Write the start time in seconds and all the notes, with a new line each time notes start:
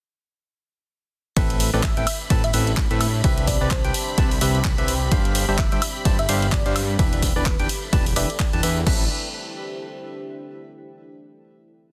1.36 A1 A2 C4 D4 A4 B4 E5 B5, kick, closed hi-hat, ride, tambourine
1.50 closed hi-hat, tambourine
1.60 open hi-hat, tambourine
1.66 G4
1.74 A1 A2 C4 A4 B4 D5, tambourine
1.83 E5, kick, clap, closed hi-hat, ride, tambourine
1.97 A1 A2 C4 A4 B4 E5 G5, closed hi-hat, tambourine
2.07 open hi-hat, tambourine, high woodblock
2.21 E5, tambourine
2.30 A1 A2 C4 A4 B4 A5, kick, closed hi-hat, ride, tambourine
2.44 E5, closed hi-hat, tambourine
2.53 A1 A2 C4 A4 B4 E5, open hi-hat, tambourine
2.67 closed hi-hat, tambourine
2.77 kick, clap, closed hi-hat, ride
2.90 A2 C4 A4 B4 E5, closed hi-hat, tambourine
3.01 open hi-hat, tambourine, high woodblock
3.14 tambourine
3.24 C2 C3 C4 G4 B4 E5, kick, closed hi-hat, ride, tambourine
3.37 closed hi-hat, tambourine
3.47 D5, kick, open hi-hat, tambourine
3.61 C2 C3 C4 G4 B4 D5, tambourine
3.71 C5, kick, clap, closed hi-hat, ride, tambourine
3.85 C2 C3 C4 G4 B4 G5, closed hi-hat, tambourine
3.94 open hi-hat, tambourine
4.08 tambourine
4.18 C2 C3 C4 G4 B4 A5, kick, closed hi-hat, ride, tambourine
4.31 open hi-hat, tambourine
4.41 C2 C3 C4 G4 B4 E5, open hi-hat, tambourine
4.54 closed hi-hat, tambourine
4.64 kick, clap, closed hi-hat, ride, tambourine
4.78 C2 C3 C4 G4 B4 E5, closed hi-hat, tambourine
4.88 open hi-hat, tambourine
5.02 tambourine
5.12 G1 G3 D4 G4 C5 F5, kick, closed hi-hat, ride, tambourine
5.25 closed hi-hat, tambourine
5.35 open hi-hat, tambourine
5.49 G1 G3 D4 G4 C5 E5, tambourine
5.58 E5, kick, clap, closed hi-hat, ride, tambourine
5.71 G1 G3 D4 G4 C5 E5 F5 G5, closed hi-hat, tambourine
5.82 open hi-hat, tambourine, high woodblock
5.96 tambourine
6.05 G1 G3 D4 G4 C5 A5, kick, closed hi-hat, ride, tambourine
6.19 E5, closed hi-hat, tambourine
6.29 G1 G3 D4 G4 C5 F5, open hi-hat, tambourine
6.42 closed hi-hat, tambourine
6.52 D5, kick, clap, closed hi-hat, ride, tambourine
6.66 G2 G3 D4 G4 C5 D5 F5, closed hi-hat, tambourine
6.76 open hi-hat, tambourine, high woodblock
6.90 tambourine
6.99 E1 E3 D4 E4 G4 B4 E5, kick, closed hi-hat, ride, tambourine
7.13 closed hi-hat, tambourine
7.22 kick, open hi-hat, tambourine
7.28 A4
7.36 E1 E3 D4 G4 B4 D5, tambourine
7.46 B4, kick, clap, closed hi-hat, ride
7.59 E1 E3 D4 G4 B4 D5 G5, closed hi-hat, tambourine
7.69 open hi-hat, tambourine
7.78 G5, tambourine
7.93 E1 E3 D4 G4 B4 A5, kick, closed hi-hat, ride, tambourine
8.06 open hi-hat, tambourine
8.16 E1 E3 D4 G4 B4 D5 E5, open hi-hat, tambourine
8.30 closed hi-hat, tambourine
8.39 kick, clap, closed hi-hat, ride, tambourine
8.53 E1 E3 D4 G4 B4 A5, closed hi-hat, tambourine
8.63 E2 D4 G4 B4 E5, open hi-hat, tambourine
8.76 tambourine
8.87 A1 C4 D4 A4 B4 E5, kick, crash
8.95 G4
9.02 C5
9.08 E5